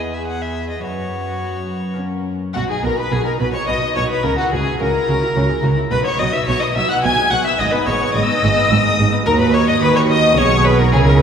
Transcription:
Already playing: E2 B3 E4 G#4 B4
0.00 D#5
0.14 E5
0.27 F#5
0.41 E5
0.70 D#5
0.79 B3 C#4 B4
0.84 F#2 B3 F#4 B4 C#5
1.94 A#3 C#4 C#5
1.98 C#4 A#4
2.55 B1 B2 F#4 F#5
2.69 D#4 G#4 G#5
2.83 B1 B2 F#4 A#4 B4 A#5
2.97 D#4 F#4 B4 B5
3.12 B1 B2 F#4 G#4 B4 G#5
3.26 D#4 A#4 A#5
3.39 B1 B2 F#4 B4 B5
3.53 D#4 F#4 C#5 C#6
3.67 B1 B2 F#4 B4 D#5 D#6
3.82 D#4 C#5
3.96 B1 B2 F#4 B4 C#5 C#6
4.09 D#4 F#4 B4 B5
4.23 C#2 C#3 F#4 A#4 A#5
4.38 E4 F#4 F#5
4.51 C#2 C#3 F#4 G#4 G#5
4.65 E4
4.79 C#2 C#3 F#4 A#4 A#5
4.94 E4
5.07 C#2 C#3 F#4
5.21 E4
5.35 C#2 C#3 F#4
5.49 E4 G#4
5.62 C#2 C#3 F#4
5.77 E4
5.91 B1 B2 F#4 B4 B5
6.05 B3 D#4 C#5 C#6
6.18 B1 B2 F#4 D#5 D#6
6.32 D#4 B4 E5 E6
6.46 B1 B2 F#4 C#5 C#6
6.60 B3 D#4 D#5 D#6
6.75 B1 B2 F#4 E5 E6
6.89 D#4 B4 F#5 F#6
7.03 B1 B2 F#4 G#5 G#6
7.18 D#4 G#4
7.30 B1 B2 F#4 F#5 F#6
7.45 D#4 B4 E5 E6
7.58 G#1 G#2 B3 D#5 D#6
7.71 B3 D#4 B4 B5
7.86 G#1 G#2 B3 G#4 C#5 C#6
8.01 D#4 B4
8.14 G#1 G#2 B3 G#4 D#5 D#6
8.24 E6
8.28 B3 D#4 D#6
8.39 G#2 B3 E6
8.43 G#1 G#2 G#4 D#6
8.54 D#4 B4 E6
8.63 D#6
8.71 G#1 G#2 B3 G#4 E6
8.79 D#6
8.84 D#4 A#4
8.98 G#1 G#2 B3 G#4
9.12 D#4 B4
9.25 D#2 F#4 A#4 A#5
9.39 D#4 B4 B5
9.54 A#4 C#5 C#6
9.68 D#5 D#6
9.81 D#2 D#3 A#4 B4 B5
9.96 D#4 C#5 C#6
10.09 A#4 D#5 D#6
10.24 D#5
10.37 B1 B2 G#4 C#5 C#6
10.52 G#3
10.64 G#4 B4 B5
10.79 D#4 A#4 A#5
10.92 C#2 C#3 E4 G#4 G#5
11.05 C#4 A#4 A#5

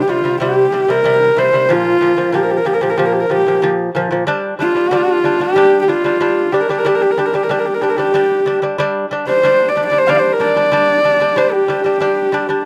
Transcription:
0.02 G4
0.08 C3 G3 F4
0.24 C3 G3
0.40 C3 G3 G4
0.72 C3 G3
0.88 C3 G3 A#4
1.04 C3 G3
1.37 C3 G3 C5
1.53 C3 G3
1.69 A#2 F3 F4
2.01 A#2 F3
2.17 A#2 F3
2.32 A#2 F3 G4
2.43 A#4
2.51 G4
2.57 A#4
2.65 A#2 F3 G4
2.74 A#4
2.81 A#2 F3 G4
2.90 A#4
2.97 A#2 F3 G4
3.05 A#4
3.13 G4
3.20 A#4
3.30 A#2 F3 G4
3.47 A#2 F3
3.62 A#2 F3
3.95 A#2 F3
4.11 A#2 F3
4.27 G3 D4
4.59 G3 D4 F4
4.75 G3 D4
4.91 G3 D4
5.24 G3 D4
5.40 G3 D4 G4
5.56 G3 D4
5.82 G4
5.88 G3 D4 F4
6.04 G3 D4
6.21 G3 D4
6.52 G3 D4 G4
6.61 A#4
6.69 G3 D4 G4
6.78 A#4
6.85 G3 D4 G4
6.95 A#4
7.02 G4
7.11 A#4
7.17 G3 D4 G4
7.26 A#4
7.33 G3 D4 G4
7.43 A#4
7.49 G3 D4 G4
7.59 A#4
7.66 G4
7.74 A#4
7.81 G3 D4 G4
7.89 A#4
7.97 G3 D4 G4
8.14 G3 D4
8.46 G3 D4
8.62 G3 D4
8.78 G3 D4
9.11 G3 D4
9.27 G3 D4 C5
9.43 G3 D4
9.68 D5
9.76 G3 D4
9.86 D5
9.91 G3 D4
9.98 C5
10.07 G3 D4 D5 F5
10.18 C5 D5
10.32 A#4
10.40 G3 D4 D5
10.56 G3 D4
10.72 G3 D4
11.04 G3 D4
11.20 G3 D4
11.36 G3 D4 C5
11.53 G4
11.68 G3 D4
11.84 G3 D4
12.00 G3 D4
12.32 G3 D4
12.49 G3 D4

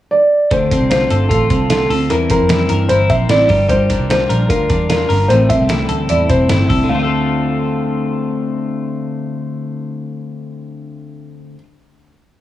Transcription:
0.11 D5
0.51 D2 D3 A3 C4 F4 A4 C5, kick, closed hi-hat
0.70 C4 F4 A4, kick, closed hi-hat
0.81 C2
0.90 D3 A3 C4 F4 A4 C5, snare, closed hi-hat
1.10 G1 A4, closed hi-hat
1.29 A1 A3 C4 F4 A4, kick, closed hi-hat
1.33 A4
1.50 C2 C4 F4 A4, kick, closed hi-hat
1.70 D3 A3 C4 F4 A4, snare, closed hi-hat
1.90 D2 C4 F4 A4, open hi-hat
2.09 E2 E3 G3 C4 E4 A#4, closed hi-hat
2.30 C4 E4 A#4, kick, closed hi-hat
2.41 F2
2.49 E3 G3 C4 E4 A#4, snare, closed hi-hat
2.69 G2 A#4, closed hi-hat
2.89 G1 G3 C4 E4 A#4 C5, closed hi-hat
3.10 A#1 C4 E4 A#4 E5, kick, closed hi-hat
3.29 A1 E3 G3 C4 E4 A#4 D5, snare, closed hi-hat
3.49 G1 G3 D4 F4 A#4, kick, open hi-hat
3.69 G3 D4 F4 A#4 C5, kick, closed hi-hat
3.90 D4 F4 A#4, kick, closed hi-hat
4.00 C2
4.10 G3 D4 F4 A#4 C5, snare, closed hi-hat
4.29 A#1 A#4, closed hi-hat
4.49 D2 G3 D4 F4 A#4, kick, closed hi-hat
4.69 E2 D4 F4 A#4, kick, closed hi-hat
4.89 G3 D4 F4 A#4, snare, closed hi-hat
5.10 G1 D4 F4 A#4, open hi-hat
5.28 A1 A2 E3 G3 C4 E4 A4 C5, closed hi-hat
5.49 G3 C4 E4 A4 E5, kick, closed hi-hat
5.61 C2
5.69 A2 E3 G3 C4 E4 A4, snare, closed hi-hat
5.89 D2 A4, closed hi-hat
6.09 E2 G3 C4 E4 A4 D5, closed hi-hat
6.29 E1 G3 C4 E4 A4 C5, kick, closed hi-hat
6.49 G1 A2 E3 G3 C4 E4 A4, snare, closed hi-hat
6.69 C2 G3 C4 E4 A4, kick, open hi-hat
6.83 D3
6.89 D2 A3 F5
6.94 C4
6.99 F4
7.04 A4

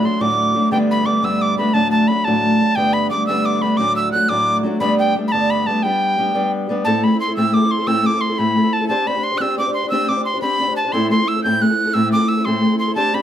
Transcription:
0.03 F#3 A3 D4 F#4 C6
0.20 D2 A2 F#3 A3 D4 F#4 D6
0.54 F#3 A3 D4 F#4
0.71 G2 D3 G3 A3 B3 D4 G5
0.91 B5
1.05 G3 A3 B3 D4 D6
1.21 G2 D3 G3 A3 B3 D4 E6
1.42 D6
1.57 G3 A3 B3 D4 B5
1.74 D2 A2 F#3 A3 D4 F#4 A5
1.91 A5
2.08 F#3 A3 D4 F#4 B5
2.24 D2 A2 F#3 A3 D4 F#4 A5
2.60 F#3 A3 D4 F#4
2.76 G2 D3 G3 A3 B3 D4 G5
2.93 B5
3.11 G3 A3 B3 D4 D6
3.27 G2 D3 G3 A3 B3 D4 E6
3.46 D6
3.61 G3 A3 B3 D4 B5
3.77 D2 A2 F#3 A3 D4 F#4 D6
3.96 E6
4.12 F#3 A3 D4 F#4 F#6
4.29 D2 A2 F#3 A3 D4 F#4 D6
4.63 F#3 A3 D4 F#4
4.80 G2 D3 G3 A3 B3 D4 B5
4.99 G5
5.16 G3 A3 B3 D4
5.28 B5
5.32 G2 D3 G3 A3 B3 D4 A5
5.50 B5
5.67 G3 A3 B3 D4 A5
5.83 G3 B3 D4 G4 G5
6.18 G3 B3 D4 G4
6.34 G3 B3 D4 G4
6.69 G3 B3 D4 G4
6.85 A2 A3 C4 E4 A4 A5
7.04 A3 C4 E4 A4 B5
7.12 C4 E4 A4
7.20 C6
7.28 C4 E4 A4
7.37 A2 A3 C4 E4 A4 E6
7.54 A3 C4 E4 A4 D6
7.62 C4 E4 A4
7.71 C6
7.79 C4 E4 A4
7.87 A2 A3 C4 E4 A4 E6
8.05 A3 C4 E4 A4 D6
8.14 C4 E4 A4
8.21 C6
8.29 C4 E4 A4
8.38 A2 A3 C4 E4 A4 B5
8.56 A3 C4 E4 A4
8.64 C4 E4 A4
8.73 A5
8.81 C4 E4 A4
8.88 C4 D4 G4 C5 A5
9.07 C4 D4 G4 C5 B5
9.14 D4 G4 C5
9.24 C6
9.32 D4 G4 C5
9.38 C4 D4 G4 E6 F#6
9.42 C5
9.58 C4 D4 G4 C5 D6
9.67 D4 G4 C5
9.74 C6
9.83 D4 G4 C5
9.90 C4 D4 G4 C5 E6
10.09 C4 D4 G4 C5 D6
10.17 D4 G4 C5
10.25 C6
10.34 D4 G4 C5
10.42 C4 D4 G4 C5 B5
10.60 C4 D4 G4 C5
10.68 D4 G4 C5
10.76 A5
10.85 D4 G4 C5
10.92 A2 A3 C4 E4 A4 C6
11.11 A3 C4 E4 A4 C6
11.20 C4 E4 A4
11.28 E6
11.36 C4 E4 A4
11.44 A2 A3 C4 E4 A4 G6
11.62 A3 C4 E4 A4 F#6
11.70 C4 E4 A4
11.86 C4 E4 A4
11.94 A2 A3 C4 E4 A4 E6
12.12 A3 C4 E4 A4 D6
12.22 C4 E4 A4
12.28 E6
12.37 C4 E4 A4
12.45 A2 A3 C4 E4 A4 C6
12.63 A3 C4 E4 A4
12.72 C4 E4 A4
12.79 C6
12.88 C4 E4 A4
12.95 C4 D4 G4 C5 A5
13.13 C4 D4 G4 C5 B5

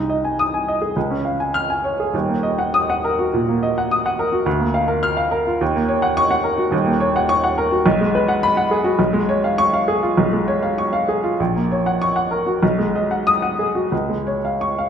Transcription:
Already playing: C2 D#4
0.10 D#5
0.25 G#5
0.39 D#6
0.54 G#5
0.68 D#5
0.82 G#4
0.96 C#2
1.10 C#4
1.25 F5
1.40 G#5
1.54 F6
1.70 G#5
1.84 C#5
2.00 G#4
2.13 D#1 D#2
2.29 A#3
2.43 D#5
2.59 F#5
2.74 D#6
2.90 F#5
3.04 A#4
3.19 F#4
3.34 A#2
3.48 A#3
3.63 D#5
3.78 F#5
3.91 D#6
4.06 F#5
4.19 A#4
4.32 F#4
4.46 D2
4.60 A#3
4.74 F5
4.88 A#4
5.03 F6
5.17 F5
5.31 A#4
5.47 F4
5.61 D#2
5.76 A#3
5.88 C#5
6.02 F#5
6.17 C#6
6.31 F#5
6.44 A#4
6.58 F#4
6.71 D#1 D#2
6.86 A#3
7.00 C#5
7.16 F#5
7.29 C#6
7.44 F#5
7.58 A#4
7.71 F#4
7.86 B1
8.01 G#3
8.15 B4
8.28 F#5
8.43 B5
8.57 F#5
8.71 G#4
8.84 F#4
8.99 B1
9.13 G#3
9.29 C#5
9.44 F5
9.58 C#6
9.74 F5
9.88 G#4
10.03 F4
10.17 B1
10.33 G#3
10.48 C#5
10.62 F5
10.78 C#6
10.93 F5
11.09 G#4
11.24 F4
11.40 A#1
11.56 A#3
11.72 C#5
11.86 F#5
12.02 C#6
12.16 F#5
12.31 A#4
12.46 F#4
12.63 B1
12.79 G#3
12.96 D#5
13.11 F#5
13.27 D#6
13.42 F#5
13.59 G#4
13.75 F#4
13.92 C#2
14.09 G#3
14.27 C#5
14.45 F5
14.61 C#6
14.78 F5

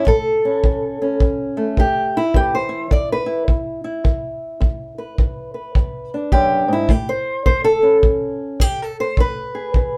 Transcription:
0.06 A2 A4, kick
0.45 C#4
0.64 E3, kick
1.02 C#4
1.20 E2, kick
1.57 A3
1.77 E3 G4, kick
2.17 E4
2.34 E2 E3 G4, kick
2.55 C5
2.69 E4
2.91 E3 D5, kick
3.12 B4
3.26 E4
3.48 E2, kick
3.84 E4
4.04 E3, kick
4.61 E2, kick
4.98 B4
5.18 E3, kick
5.54 B4
5.75 E2, kick
6.14 D4
6.32 F#2 G4, kick
6.68 G#2
6.73 E4
6.89 A2 G4, kick
7.09 C5
7.46 E3 C5, kick
7.64 A4
7.83 C#4
8.03 E2, kick
8.60 E3 G4, kick
8.82 A4
9.00 C5
9.17 E2 B4, kick
9.55 G#4
9.74 E3, kick

